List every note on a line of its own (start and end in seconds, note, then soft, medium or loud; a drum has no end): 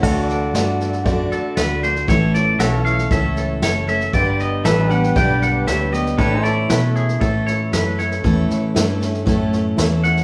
0.02 0.53 D2 medium
0.02 0.53 D3 medium
0.02 0.55 A3 medium
0.02 0.54 D4 loud
0.02 0.39 F#4 medium
0.02 2.06 F#4 medium
0.02 0.55 F#4 medium
0.02 0.39 A4 medium
0.02 2.07 A4 medium
0.02 0.25 C#5 medium
0.02 0.40 D5 medium
0.02 kick medium
0.02 snare soft
0.02 crash medium
0.25 2.07 D5 medium
0.29 snare soft
0.54 1.04 G2 medium
0.54 1.04 D3 medium
0.54 1.06 A3 medium
0.54 1.05 D4 medium
0.54 0.91 F#4 medium
0.54 1.06 F#4 medium
0.54 0.91 A4 medium
0.54 0.91 D5 medium
0.54 snare medium
0.54 hi-hat pedal medium
0.80 snare soft
0.93 snare soft
1.03 1.30 F#2 medium
1.03 1.56 D3 medium
1.03 1.57 A3 medium
1.03 1.57 D4 medium
1.03 1.41 F#4 medium
1.03 1.58 F#4 medium
1.03 1.42 A4 medium
1.03 1.42 D5 medium
1.03 kick loud
1.03 snare soft
1.31 1.57 A4 medium
1.31 muted fingered electric bass stroke soft
1.31 snare soft
1.56 2.07 D2 medium
1.56 1.83 D3 medium
1.56 1.83 A3 medium
1.56 1.82 D4 medium
1.56 1.93 F#4 medium
1.56 1.81 F#4 medium
1.56 1.93 A4 medium
1.56 1.82 B4 medium
1.56 1.94 D5 medium
1.56 snare loud
1.56 hi-hat pedal medium
1.82 2.07 A3 soft
1.82 2.09 D4 soft
1.82 2.08 F#4 soft
1.82 2.08 C5 medium
1.82 snare soft
1.96 snare soft
2.08 2.58 A1 medium
2.08 2.59 A2 medium
2.08 2.58 E3 medium
2.08 2.59 A3 medium
2.08 2.59 C#4 medium
2.08 2.45 E4 medium
2.08 2.45 A4 medium
2.08 2.60 A4 medium
2.08 2.34 C#5 medium
2.08 2.46 C#5 medium
2.08 kick loud
2.08 snare soft
2.34 2.59 D5 medium
2.34 snare soft
2.59 3.09 B1 medium
2.59 3.10 E3 medium
2.59 3.11 A3 medium
2.59 3.11 C#4 medium
2.59 2.96 E4 medium
2.59 2.85 F#4 medium
2.59 2.96 A4 medium
2.59 4.13 A4 medium
2.59 3.11 A4 medium
2.59 2.97 C#5 medium
2.59 4.13 C#5 medium
2.59 2.84 E5 medium
2.59 snare medium
2.59 hi-hat pedal medium
2.85 4.12 E4 medium
2.85 3.10 F5 loud
2.85 snare soft
2.98 snare soft
3.11 3.61 C#2 medium
3.11 3.62 A2 medium
3.11 3.61 E3 medium
3.11 3.62 A3 medium
3.11 3.63 C#4 medium
3.11 3.47 E4 medium
3.11 3.48 A4 medium
3.11 3.63 A4 medium
3.11 3.48 C#5 medium
3.11 3.36 E5 medium
3.11 kick loud
3.11 snare soft
3.36 3.62 A4 soft
3.36 snare soft
3.62 4.12 F#1 medium
3.62 3.88 E3 medium
3.62 3.88 A3 medium
3.62 3.88 C#4 medium
3.62 3.99 E4 medium
3.62 3.99 A4 medium
3.62 3.86 A4 medium
3.62 3.88 C#5 medium
3.62 3.99 C#5 medium
3.62 snare loud
3.62 hi-hat pedal medium
3.88 4.14 A3 soft
3.88 4.14 C#4 soft
3.88 4.13 A4 soft
3.88 4.13 E5 loud
3.88 snare soft
4.01 snare soft
4.13 4.63 G1 medium
4.13 4.65 G2 medium
4.13 4.65 D3 medium
4.13 4.63 G3 medium
4.13 4.64 B3 medium
4.13 4.64 D4 loud
4.13 4.50 G4 medium
4.13 4.65 G4 medium
4.13 4.50 B4 medium
4.13 4.39 D5 medium
4.13 4.51 D5 medium
4.13 kick loud
4.13 snare soft
4.39 4.65 D#5 medium
4.39 snare soft
4.64 5.15 A1 medium
4.64 4.90 G3 medium
4.64 4.90 B3 medium
4.64 4.89 D4 medium
4.64 4.90 E4 medium
4.64 5.01 G4 medium
4.64 4.88 G4 medium
4.64 4.91 A4 medium
4.64 5.02 B4 medium
4.64 6.19 B4 medium
4.64 5.02 C#5 medium
4.64 4.90 E5 medium
4.64 snare loud
4.64 hi-hat pedal medium
4.89 5.14 G3 soft
4.89 5.15 B3 soft
4.89 6.17 D4 medium
4.89 5.15 D4 soft
4.89 5.16 G4 medium
4.89 6.18 G4 medium
4.89 5.15 F#5 loud
4.89 snare soft
5.04 snare soft
5.15 5.66 B1 medium
5.15 5.67 G2 medium
5.15 5.67 D3 medium
5.15 5.65 G3 medium
5.15 5.66 B3 medium
5.15 5.67 D4 medium
5.15 5.53 G4 medium
5.15 5.67 G4 medium
5.15 5.53 B4 medium
5.15 5.53 D5 medium
5.15 5.41 G5 loud
5.15 kick loud
5.15 snare soft
5.42 5.67 F#5 medium
5.42 snare soft
5.66 6.17 D2 medium
5.66 5.93 G3 medium
5.66 5.93 B3 medium
5.66 5.92 D4 medium
5.66 6.04 G4 medium
5.66 5.91 G4 medium
5.66 6.04 B4 medium
5.66 6.05 C#5 medium
5.66 5.92 E5 medium
5.66 snare loud
5.66 hi-hat pedal medium
5.92 6.18 G3 soft
5.92 6.19 B3 soft
5.92 6.19 D4 soft
5.92 6.18 G4 soft
5.92 6.18 D#5 medium
5.92 snare soft
6.06 snare soft
6.17 6.68 A2 medium
6.17 6.70 A2 medium
6.17 6.68 E3 medium
6.17 6.69 A3 medium
6.17 6.70 C#4 medium
6.17 6.43 D4 medium
6.17 6.55 E4 medium
6.17 6.45 G4 medium
6.17 6.55 A4 medium
6.17 6.70 A4 medium
6.17 6.45 B4 medium
6.17 6.43 C#5 medium
6.17 6.56 C#5 medium
6.17 kick loud
6.17 snare soft
6.43 10.24 E4 medium
6.43 10.24 A4 medium
6.43 10.24 C#5 medium
6.43 6.69 D5 loud
6.43 snare soft
6.69 7.20 B2 medium
6.69 7.20 E3 medium
6.69 7.20 A3 medium
6.69 7.21 C#4 medium
6.69 7.06 E4 medium
6.69 7.06 A4 medium
6.69 7.21 A4 medium
6.69 6.95 B4 medium
6.69 7.07 C#5 medium
6.69 snare loud
6.69 hi-hat pedal medium
6.96 7.20 G#4 medium
6.96 snare soft
7.09 snare soft
7.20 7.72 A2 medium
7.20 7.71 A2 medium
7.20 7.71 E3 medium
7.20 7.72 A3 medium
7.20 7.73 C#4 medium
7.20 7.57 E4 medium
7.20 7.46 A4 medium
7.20 7.58 A4 medium
7.20 7.73 A4 medium
7.20 7.58 C#5 medium
7.20 kick loud
7.20 snare soft
7.47 7.72 C#5 medium
7.47 snare soft
7.72 8.23 F#2 medium
7.72 7.98 E3 medium
7.72 7.99 A3 medium
7.72 7.98 C#4 medium
7.72 8.09 E4 medium
7.72 8.09 A4 medium
7.72 7.97 A4 medium
7.72 7.98 B4 medium
7.72 8.10 C#5 medium
7.72 snare loud
7.72 hi-hat pedal medium
7.98 8.23 A3 soft
7.98 8.24 C#4 soft
7.98 8.24 A4 soft
7.98 8.72 C#5 medium
7.98 snare soft
8.12 snare soft
8.23 8.48 E2 medium
8.23 8.75 A2 medium
8.23 8.74 E3 medium
8.23 8.75 A3 medium
8.23 8.75 C#4 medium
8.23 8.60 E4 medium
8.23 8.61 A4 medium
8.23 8.76 A4 loud
8.23 8.61 C#5 medium
8.23 kick medium
8.23 snare soft
8.50 snare soft
8.74 9.25 G2 medium
8.74 9.01 E3 medium
8.74 9.01 A3 medium
8.74 9.01 C#4 medium
8.74 9.11 E4 medium
8.74 9.12 A4 medium
8.74 8.99 A4 medium
8.74 9.12 C#5 medium
8.74 snare loud
8.74 hi-hat pedal medium
9.00 9.25 A3 soft
9.00 9.26 C#4 soft
9.00 9.26 A4 medium
9.00 snare soft
9.14 snare soft
9.25 9.77 F#2 medium
9.25 9.78 A2 medium
9.25 9.76 E3 medium
9.25 9.77 A3 medium
9.25 9.78 C#4 medium
9.25 9.62 E4 medium
9.25 9.63 A4 medium
9.25 9.78 A4 loud
9.25 9.63 C#5 medium
9.25 kick loud
9.25 snare soft
9.53 snare soft
9.76 10.24 E2 medium
9.76 10.03 E3 medium
9.76 10.04 A3 medium
9.76 10.03 C#4 medium
9.76 10.14 E4 medium
9.76 10.14 A4 medium
9.76 10.02 A4 medium
9.76 10.15 C#5 medium
9.76 snare loud
9.76 hi-hat pedal medium
10.03 10.24 A3 soft
10.03 10.24 C#4 soft
10.03 10.24 A4 soft
10.03 10.24 F#5 loud
10.03 snare soft
10.17 snare soft